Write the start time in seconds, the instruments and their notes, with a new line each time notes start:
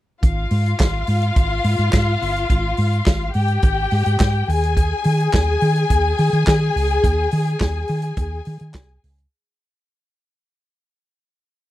0.23 fingered electric bass G#1, string section F4 F5, kick, closed hi-hat
0.51 fingered electric bass G#2, open hi-hat
0.66 closed hi-hat
0.80 fingered electric bass G#1, kick, snare, clap, closed hi-hat
1.07 fingered electric bass G#2, open hi-hat
1.22 closed hi-hat
1.36 fingered electric bass G#1, kick, closed hi-hat
1.64 fingered electric bass G#2, open hi-hat
1.79 fingered electric bass G#2, closed hi-hat
1.93 fingered electric bass G#2, kick, snare, clap, closed hi-hat
2.22 fingered electric bass G1, open hi-hat
2.36 closed hi-hat
2.50 fingered electric bass G#1, kick, closed hi-hat
2.77 fingered electric bass G#2, open hi-hat
2.93 closed hi-hat
3.06 fingered electric bass G#1, kick, snare, clap, closed hi-hat
3.34 fingered electric bass G#2, string section G4 G5, open hi-hat
3.48 closed hi-hat
3.62 fingered electric bass G#1, kick, closed hi-hat
3.91 fingered electric bass G#2, open hi-hat
4.06 fingered electric bass G#2, closed hi-hat
4.20 fingered electric bass G#2, kick, snare, clap, closed hi-hat
4.48 fingered electric bass D#2, string section G#4 G#5, open hi-hat
4.63 closed hi-hat
4.77 kick, closed hi-hat
5.04 fingered electric bass D#3, open hi-hat
5.20 closed hi-hat
5.33 fingered electric bass D#2, kick, snare, clap, closed hi-hat
5.61 fingered electric bass D#3, open hi-hat
5.76 closed hi-hat
5.90 fingered electric bass D#2, kick, closed hi-hat
6.18 fingered electric bass D#3, open hi-hat
6.33 fingered electric bass D#3, closed hi-hat
6.47 fingered electric bass D#3, kick, snare, clap, closed hi-hat
6.75 fingered electric bass C#2, open hi-hat
6.91 closed hi-hat
7.04 fingered electric bass D#2, kick, closed hi-hat
7.31 fingered electric bass D#3, open hi-hat
7.47 closed hi-hat
7.60 fingered electric bass D#2, kick, snare, clap, closed hi-hat
7.88 fingered electric bass D#3, open hi-hat
8.02 closed hi-hat
8.17 fingered electric bass D#2, kick, closed hi-hat
8.45 fingered electric bass D#3, open hi-hat
8.59 fingered electric bass D#3, closed hi-hat
8.74 fingered electric bass C2, kick, snare, clap, closed hi-hat
9.03 fingered electric bass C#2, open hi-hat
9.18 closed hi-hat